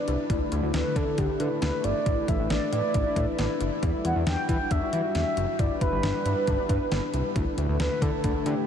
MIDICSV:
0, 0, Header, 1, 6, 480
1, 0, Start_track
1, 0, Tempo, 441176
1, 324, Time_signature, 4, 2, 24, 8
1, 9430, End_track
2, 0, Start_track
2, 0, Title_t, "Soft synth lead"
2, 0, Program_c, 0, 80
2, 807, Note_on_c, 0, 71, 91
2, 1048, Note_on_c, 0, 69, 85
2, 1064, Note_off_c, 0, 71, 0
2, 1286, Note_on_c, 0, 67, 89
2, 1302, Note_off_c, 0, 69, 0
2, 1526, Note_on_c, 0, 71, 92
2, 1542, Note_off_c, 0, 67, 0
2, 1758, Note_off_c, 0, 71, 0
2, 1765, Note_on_c, 0, 71, 98
2, 2004, Note_on_c, 0, 74, 104
2, 2020, Note_off_c, 0, 71, 0
2, 2486, Note_on_c, 0, 76, 109
2, 2502, Note_off_c, 0, 74, 0
2, 2718, Note_off_c, 0, 76, 0
2, 2724, Note_on_c, 0, 74, 104
2, 2948, Note_off_c, 0, 74, 0
2, 2964, Note_on_c, 0, 74, 101
2, 3881, Note_off_c, 0, 74, 0
2, 4405, Note_on_c, 0, 78, 102
2, 4513, Note_off_c, 0, 78, 0
2, 4645, Note_on_c, 0, 79, 108
2, 4868, Note_off_c, 0, 79, 0
2, 4884, Note_on_c, 0, 79, 101
2, 5125, Note_on_c, 0, 76, 104
2, 5141, Note_off_c, 0, 79, 0
2, 5598, Note_off_c, 0, 76, 0
2, 5604, Note_on_c, 0, 76, 102
2, 6086, Note_on_c, 0, 74, 100
2, 6102, Note_off_c, 0, 76, 0
2, 6320, Note_off_c, 0, 74, 0
2, 6327, Note_on_c, 0, 71, 93
2, 7722, Note_off_c, 0, 71, 0
2, 8485, Note_on_c, 0, 71, 107
2, 8723, Note_on_c, 0, 69, 102
2, 8739, Note_off_c, 0, 71, 0
2, 9203, Note_on_c, 0, 67, 97
2, 9220, Note_off_c, 0, 69, 0
2, 9430, Note_off_c, 0, 67, 0
2, 9430, End_track
3, 0, Start_track
3, 0, Title_t, "Synth pluck"
3, 0, Program_c, 1, 84
3, 84, Note_on_c, 1, 64, 77
3, 213, Note_off_c, 1, 64, 0
3, 325, Note_on_c, 1, 64, 95
3, 453, Note_off_c, 1, 64, 0
3, 564, Note_on_c, 1, 64, 82
3, 693, Note_off_c, 1, 64, 0
3, 804, Note_on_c, 1, 62, 81
3, 933, Note_off_c, 1, 62, 0
3, 1045, Note_on_c, 1, 64, 82
3, 1173, Note_off_c, 1, 64, 0
3, 1283, Note_on_c, 1, 62, 87
3, 1348, Note_off_c, 1, 62, 0
3, 1405, Note_on_c, 1, 62, 74
3, 1469, Note_off_c, 1, 62, 0
3, 1525, Note_on_c, 1, 64, 79
3, 1653, Note_off_c, 1, 64, 0
3, 1764, Note_on_c, 1, 62, 80
3, 1892, Note_off_c, 1, 62, 0
3, 2004, Note_on_c, 1, 64, 78
3, 2132, Note_off_c, 1, 64, 0
3, 2242, Note_on_c, 1, 64, 95
3, 2371, Note_off_c, 1, 64, 0
3, 2482, Note_on_c, 1, 64, 77
3, 2611, Note_off_c, 1, 64, 0
3, 2724, Note_on_c, 1, 62, 86
3, 2852, Note_off_c, 1, 62, 0
3, 2963, Note_on_c, 1, 64, 83
3, 3091, Note_off_c, 1, 64, 0
3, 3203, Note_on_c, 1, 62, 88
3, 3268, Note_off_c, 1, 62, 0
3, 3323, Note_on_c, 1, 62, 74
3, 3388, Note_off_c, 1, 62, 0
3, 3443, Note_on_c, 1, 64, 78
3, 3572, Note_off_c, 1, 64, 0
3, 3684, Note_on_c, 1, 62, 86
3, 3812, Note_off_c, 1, 62, 0
3, 3923, Note_on_c, 1, 64, 76
3, 4052, Note_off_c, 1, 64, 0
3, 4163, Note_on_c, 1, 64, 94
3, 4291, Note_off_c, 1, 64, 0
3, 4402, Note_on_c, 1, 64, 81
3, 4531, Note_off_c, 1, 64, 0
3, 4643, Note_on_c, 1, 62, 87
3, 4771, Note_off_c, 1, 62, 0
3, 4883, Note_on_c, 1, 64, 82
3, 5012, Note_off_c, 1, 64, 0
3, 5123, Note_on_c, 1, 62, 89
3, 5188, Note_off_c, 1, 62, 0
3, 5244, Note_on_c, 1, 62, 71
3, 5308, Note_off_c, 1, 62, 0
3, 5364, Note_on_c, 1, 64, 83
3, 5492, Note_off_c, 1, 64, 0
3, 5603, Note_on_c, 1, 62, 82
3, 5732, Note_off_c, 1, 62, 0
3, 5845, Note_on_c, 1, 64, 79
3, 5973, Note_off_c, 1, 64, 0
3, 6084, Note_on_c, 1, 64, 96
3, 6212, Note_off_c, 1, 64, 0
3, 6324, Note_on_c, 1, 64, 79
3, 6452, Note_off_c, 1, 64, 0
3, 6564, Note_on_c, 1, 62, 81
3, 6693, Note_off_c, 1, 62, 0
3, 6804, Note_on_c, 1, 64, 82
3, 6932, Note_off_c, 1, 64, 0
3, 7044, Note_on_c, 1, 62, 89
3, 7108, Note_off_c, 1, 62, 0
3, 7164, Note_on_c, 1, 62, 75
3, 7228, Note_off_c, 1, 62, 0
3, 7284, Note_on_c, 1, 64, 81
3, 7413, Note_off_c, 1, 64, 0
3, 7525, Note_on_c, 1, 62, 82
3, 7653, Note_off_c, 1, 62, 0
3, 7764, Note_on_c, 1, 64, 79
3, 7892, Note_off_c, 1, 64, 0
3, 8005, Note_on_c, 1, 64, 93
3, 8133, Note_off_c, 1, 64, 0
3, 8244, Note_on_c, 1, 64, 81
3, 8372, Note_off_c, 1, 64, 0
3, 8485, Note_on_c, 1, 62, 86
3, 8613, Note_off_c, 1, 62, 0
3, 8725, Note_on_c, 1, 64, 85
3, 8853, Note_off_c, 1, 64, 0
3, 8965, Note_on_c, 1, 62, 86
3, 9029, Note_off_c, 1, 62, 0
3, 9084, Note_on_c, 1, 62, 71
3, 9149, Note_off_c, 1, 62, 0
3, 9206, Note_on_c, 1, 64, 83
3, 9334, Note_off_c, 1, 64, 0
3, 9430, End_track
4, 0, Start_track
4, 0, Title_t, "Analog synth pad"
4, 0, Program_c, 2, 89
4, 0, Note_on_c, 2, 55, 85
4, 0, Note_on_c, 2, 62, 78
4, 0, Note_on_c, 2, 71, 90
4, 287, Note_off_c, 2, 55, 0
4, 305, Note_off_c, 2, 62, 0
4, 305, Note_off_c, 2, 71, 0
4, 323, Note_on_c, 2, 57, 80
4, 324, Note_on_c, 2, 64, 94
4, 325, Note_on_c, 2, 50, 83
4, 2225, Note_off_c, 2, 50, 0
4, 2247, Note_on_c, 2, 71, 93
4, 4125, Note_off_c, 2, 57, 0
4, 4146, Note_off_c, 2, 71, 0
4, 4165, Note_on_c, 2, 55, 86
4, 4166, Note_on_c, 2, 66, 95
4, 6041, Note_off_c, 2, 64, 0
4, 6066, Note_off_c, 2, 66, 0
4, 6085, Note_on_c, 2, 62, 79
4, 6086, Note_on_c, 2, 71, 97
4, 7966, Note_off_c, 2, 55, 0
4, 7986, Note_off_c, 2, 62, 0
4, 7986, Note_off_c, 2, 71, 0
4, 8005, Note_on_c, 2, 50, 90
4, 8005, Note_on_c, 2, 57, 82
4, 8005, Note_on_c, 2, 64, 91
4, 9430, Note_off_c, 2, 50, 0
4, 9430, Note_off_c, 2, 57, 0
4, 9430, Note_off_c, 2, 64, 0
4, 9430, End_track
5, 0, Start_track
5, 0, Title_t, "Analog synth bass"
5, 0, Program_c, 3, 38
5, 84, Note_on_c, 3, 36, 86
5, 181, Note_off_c, 3, 36, 0
5, 325, Note_on_c, 3, 38, 105
5, 421, Note_off_c, 3, 38, 0
5, 564, Note_on_c, 3, 38, 100
5, 661, Note_off_c, 3, 38, 0
5, 684, Note_on_c, 3, 38, 99
5, 781, Note_off_c, 3, 38, 0
5, 803, Note_on_c, 3, 38, 105
5, 900, Note_off_c, 3, 38, 0
5, 1043, Note_on_c, 3, 50, 102
5, 1140, Note_off_c, 3, 50, 0
5, 1286, Note_on_c, 3, 38, 113
5, 1382, Note_off_c, 3, 38, 0
5, 1522, Note_on_c, 3, 50, 95
5, 1620, Note_off_c, 3, 50, 0
5, 1763, Note_on_c, 3, 38, 98
5, 1860, Note_off_c, 3, 38, 0
5, 2004, Note_on_c, 3, 31, 89
5, 2101, Note_off_c, 3, 31, 0
5, 2245, Note_on_c, 3, 33, 108
5, 2341, Note_off_c, 3, 33, 0
5, 2484, Note_on_c, 3, 33, 99
5, 2581, Note_off_c, 3, 33, 0
5, 2604, Note_on_c, 3, 33, 101
5, 2701, Note_off_c, 3, 33, 0
5, 2724, Note_on_c, 3, 33, 97
5, 2821, Note_off_c, 3, 33, 0
5, 2965, Note_on_c, 3, 45, 98
5, 3062, Note_off_c, 3, 45, 0
5, 3205, Note_on_c, 3, 33, 100
5, 3302, Note_off_c, 3, 33, 0
5, 3441, Note_on_c, 3, 45, 99
5, 3539, Note_off_c, 3, 45, 0
5, 3686, Note_on_c, 3, 33, 96
5, 3782, Note_off_c, 3, 33, 0
5, 3924, Note_on_c, 3, 30, 88
5, 4021, Note_off_c, 3, 30, 0
5, 4164, Note_on_c, 3, 40, 112
5, 4261, Note_off_c, 3, 40, 0
5, 4404, Note_on_c, 3, 40, 92
5, 4501, Note_off_c, 3, 40, 0
5, 4523, Note_on_c, 3, 40, 100
5, 4620, Note_off_c, 3, 40, 0
5, 4643, Note_on_c, 3, 40, 102
5, 4740, Note_off_c, 3, 40, 0
5, 4883, Note_on_c, 3, 52, 97
5, 4980, Note_off_c, 3, 52, 0
5, 5125, Note_on_c, 3, 40, 104
5, 5221, Note_off_c, 3, 40, 0
5, 5363, Note_on_c, 3, 52, 95
5, 5460, Note_off_c, 3, 52, 0
5, 5603, Note_on_c, 3, 40, 95
5, 5700, Note_off_c, 3, 40, 0
5, 5843, Note_on_c, 3, 30, 86
5, 5940, Note_off_c, 3, 30, 0
5, 6084, Note_on_c, 3, 31, 107
5, 6181, Note_off_c, 3, 31, 0
5, 6323, Note_on_c, 3, 31, 101
5, 6421, Note_off_c, 3, 31, 0
5, 6444, Note_on_c, 3, 31, 106
5, 6541, Note_off_c, 3, 31, 0
5, 6563, Note_on_c, 3, 31, 106
5, 6660, Note_off_c, 3, 31, 0
5, 6803, Note_on_c, 3, 43, 88
5, 6900, Note_off_c, 3, 43, 0
5, 7046, Note_on_c, 3, 31, 106
5, 7142, Note_off_c, 3, 31, 0
5, 7282, Note_on_c, 3, 43, 92
5, 7380, Note_off_c, 3, 43, 0
5, 7523, Note_on_c, 3, 31, 105
5, 7620, Note_off_c, 3, 31, 0
5, 7763, Note_on_c, 3, 36, 87
5, 7860, Note_off_c, 3, 36, 0
5, 8005, Note_on_c, 3, 38, 106
5, 8101, Note_off_c, 3, 38, 0
5, 8244, Note_on_c, 3, 38, 103
5, 8341, Note_off_c, 3, 38, 0
5, 8365, Note_on_c, 3, 38, 99
5, 8461, Note_off_c, 3, 38, 0
5, 8484, Note_on_c, 3, 38, 117
5, 8581, Note_off_c, 3, 38, 0
5, 8724, Note_on_c, 3, 50, 104
5, 8821, Note_off_c, 3, 50, 0
5, 8966, Note_on_c, 3, 38, 102
5, 9062, Note_off_c, 3, 38, 0
5, 9204, Note_on_c, 3, 50, 97
5, 9301, Note_off_c, 3, 50, 0
5, 9430, End_track
6, 0, Start_track
6, 0, Title_t, "Drums"
6, 84, Note_on_c, 9, 42, 76
6, 192, Note_off_c, 9, 42, 0
6, 324, Note_on_c, 9, 36, 113
6, 325, Note_on_c, 9, 42, 72
6, 433, Note_off_c, 9, 36, 0
6, 433, Note_off_c, 9, 42, 0
6, 564, Note_on_c, 9, 42, 79
6, 673, Note_off_c, 9, 42, 0
6, 803, Note_on_c, 9, 42, 59
6, 804, Note_on_c, 9, 38, 114
6, 912, Note_off_c, 9, 42, 0
6, 913, Note_off_c, 9, 38, 0
6, 1043, Note_on_c, 9, 36, 89
6, 1046, Note_on_c, 9, 42, 81
6, 1152, Note_off_c, 9, 36, 0
6, 1155, Note_off_c, 9, 42, 0
6, 1282, Note_on_c, 9, 42, 80
6, 1285, Note_on_c, 9, 36, 93
6, 1391, Note_off_c, 9, 42, 0
6, 1394, Note_off_c, 9, 36, 0
6, 1523, Note_on_c, 9, 42, 74
6, 1631, Note_off_c, 9, 42, 0
6, 1762, Note_on_c, 9, 42, 70
6, 1765, Note_on_c, 9, 38, 102
6, 1871, Note_off_c, 9, 42, 0
6, 1874, Note_off_c, 9, 38, 0
6, 2002, Note_on_c, 9, 42, 77
6, 2111, Note_off_c, 9, 42, 0
6, 2244, Note_on_c, 9, 36, 116
6, 2244, Note_on_c, 9, 42, 73
6, 2352, Note_off_c, 9, 42, 0
6, 2353, Note_off_c, 9, 36, 0
6, 2484, Note_on_c, 9, 36, 96
6, 2484, Note_on_c, 9, 42, 82
6, 2592, Note_off_c, 9, 36, 0
6, 2593, Note_off_c, 9, 42, 0
6, 2723, Note_on_c, 9, 42, 59
6, 2724, Note_on_c, 9, 38, 113
6, 2832, Note_off_c, 9, 42, 0
6, 2833, Note_off_c, 9, 38, 0
6, 2966, Note_on_c, 9, 42, 80
6, 3075, Note_off_c, 9, 42, 0
6, 3202, Note_on_c, 9, 42, 80
6, 3206, Note_on_c, 9, 36, 96
6, 3311, Note_off_c, 9, 42, 0
6, 3314, Note_off_c, 9, 36, 0
6, 3441, Note_on_c, 9, 36, 85
6, 3443, Note_on_c, 9, 42, 76
6, 3550, Note_off_c, 9, 36, 0
6, 3552, Note_off_c, 9, 42, 0
6, 3683, Note_on_c, 9, 42, 69
6, 3686, Note_on_c, 9, 38, 98
6, 3792, Note_off_c, 9, 42, 0
6, 3795, Note_off_c, 9, 38, 0
6, 3923, Note_on_c, 9, 42, 80
6, 4032, Note_off_c, 9, 42, 0
6, 4164, Note_on_c, 9, 36, 115
6, 4164, Note_on_c, 9, 42, 74
6, 4273, Note_off_c, 9, 36, 0
6, 4273, Note_off_c, 9, 42, 0
6, 4404, Note_on_c, 9, 42, 78
6, 4513, Note_off_c, 9, 42, 0
6, 4642, Note_on_c, 9, 42, 61
6, 4643, Note_on_c, 9, 38, 114
6, 4751, Note_off_c, 9, 42, 0
6, 4752, Note_off_c, 9, 38, 0
6, 4883, Note_on_c, 9, 36, 86
6, 4886, Note_on_c, 9, 42, 83
6, 4992, Note_off_c, 9, 36, 0
6, 4994, Note_off_c, 9, 42, 0
6, 5122, Note_on_c, 9, 42, 81
6, 5125, Note_on_c, 9, 36, 94
6, 5231, Note_off_c, 9, 42, 0
6, 5234, Note_off_c, 9, 36, 0
6, 5362, Note_on_c, 9, 42, 77
6, 5471, Note_off_c, 9, 42, 0
6, 5602, Note_on_c, 9, 42, 71
6, 5605, Note_on_c, 9, 38, 99
6, 5711, Note_off_c, 9, 42, 0
6, 5714, Note_off_c, 9, 38, 0
6, 5843, Note_on_c, 9, 42, 79
6, 5952, Note_off_c, 9, 42, 0
6, 6084, Note_on_c, 9, 36, 120
6, 6084, Note_on_c, 9, 42, 73
6, 6192, Note_off_c, 9, 42, 0
6, 6193, Note_off_c, 9, 36, 0
6, 6323, Note_on_c, 9, 36, 96
6, 6324, Note_on_c, 9, 42, 79
6, 6432, Note_off_c, 9, 36, 0
6, 6433, Note_off_c, 9, 42, 0
6, 6563, Note_on_c, 9, 42, 60
6, 6564, Note_on_c, 9, 38, 120
6, 6672, Note_off_c, 9, 42, 0
6, 6673, Note_off_c, 9, 38, 0
6, 6806, Note_on_c, 9, 42, 83
6, 6915, Note_off_c, 9, 42, 0
6, 7043, Note_on_c, 9, 42, 78
6, 7046, Note_on_c, 9, 36, 93
6, 7152, Note_off_c, 9, 42, 0
6, 7154, Note_off_c, 9, 36, 0
6, 7282, Note_on_c, 9, 36, 86
6, 7283, Note_on_c, 9, 42, 77
6, 7390, Note_off_c, 9, 36, 0
6, 7392, Note_off_c, 9, 42, 0
6, 7524, Note_on_c, 9, 42, 69
6, 7527, Note_on_c, 9, 38, 101
6, 7633, Note_off_c, 9, 42, 0
6, 7636, Note_off_c, 9, 38, 0
6, 7764, Note_on_c, 9, 42, 79
6, 7873, Note_off_c, 9, 42, 0
6, 8005, Note_on_c, 9, 36, 114
6, 8005, Note_on_c, 9, 42, 72
6, 8114, Note_off_c, 9, 36, 0
6, 8114, Note_off_c, 9, 42, 0
6, 8245, Note_on_c, 9, 42, 81
6, 8354, Note_off_c, 9, 42, 0
6, 8483, Note_on_c, 9, 42, 62
6, 8485, Note_on_c, 9, 38, 118
6, 8592, Note_off_c, 9, 42, 0
6, 8593, Note_off_c, 9, 38, 0
6, 8724, Note_on_c, 9, 36, 93
6, 8727, Note_on_c, 9, 42, 82
6, 8833, Note_off_c, 9, 36, 0
6, 8836, Note_off_c, 9, 42, 0
6, 8964, Note_on_c, 9, 42, 76
6, 8966, Note_on_c, 9, 36, 92
6, 9073, Note_off_c, 9, 42, 0
6, 9075, Note_off_c, 9, 36, 0
6, 9204, Note_on_c, 9, 42, 79
6, 9313, Note_off_c, 9, 42, 0
6, 9430, End_track
0, 0, End_of_file